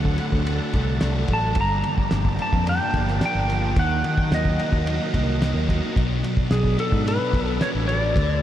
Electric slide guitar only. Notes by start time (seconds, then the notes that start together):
Already playing: F#5
1.33 A5
1.61 A#5
2.42 A5
2.69 G5
3.25 G5
3.79 F#5
4.34 D#5
6.52 G#4
6.80 A4
7.08 B4
7.62 C#5
7.88 D5